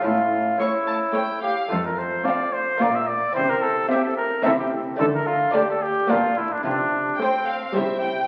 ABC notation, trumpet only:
X:1
M:3/4
L:1/16
Q:1/4=109
K:Aphr
V:1 name="Trumpet"
F4 E6 G2 | [K:F] A B c2 d2 c2 d e d2 | c B A2 G A B2 A G z2 | A B F2 G A G2 F2 E D |
D4 C6 z2 |]